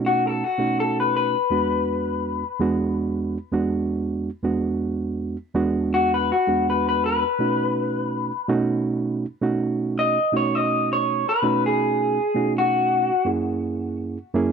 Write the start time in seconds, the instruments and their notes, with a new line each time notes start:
Already playing: reed electric piano B2 A3 C#4 D#4 F#4
0.06 clean electric guitar F#4
0.27 clean electric guitar A4
0.44 clean electric guitar F#4
0.58 reed electric piano B2 A3 C#4 D#4 F#4
0.80 clean electric guitar A4
1.00 clean electric guitar B4
1.17 clean electric guitar B4
1.50 reed electric piano E2 G#3 B3 D4 F#4
2.60 reed electric piano E2 G#3 B3 D4 F#4
3.52 reed electric piano E2 G#3 B3 D4 F#4
4.43 reed electric piano E2 G#3 B3 D4 F#4
5.54 reed electric piano E2 G#3 B3 D4 F#4
5.94 clean electric guitar F#4
6.14 clean electric guitar B4
6.32 clean electric guitar F#4
6.47 reed electric piano E2 G#3 B3 D4 F#4
6.70 clean electric guitar B4
6.89 clean electric guitar B4
7.06 clean electric guitar B4
7.39 reed electric piano B2 A3 C#4 D#4 F#4
8.48 reed electric piano B2 A3 C#4 D#4 F#4
9.41 reed electric piano B2 A3 C#4 D#4 F#4
9.99 clean electric guitar D#5
10.32 reed electric piano B2 A3 C#4 D#4 F#4
10.37 clean electric guitar C#5
10.55 clean electric guitar D#5
10.93 clean electric guitar C#5
11.29 clean electric guitar B4
11.42 reed electric piano B2 A3 C#4 D#4 F#4
11.66 clean electric guitar G#4
12.34 reed electric piano B2 A3 C#4 D#4 F#4
12.58 clean electric guitar F#4
13.25 reed electric piano F#2 A#3 C#4 E4 G#4
14.34 reed electric piano F#2 A#3 C#4 E4 G#4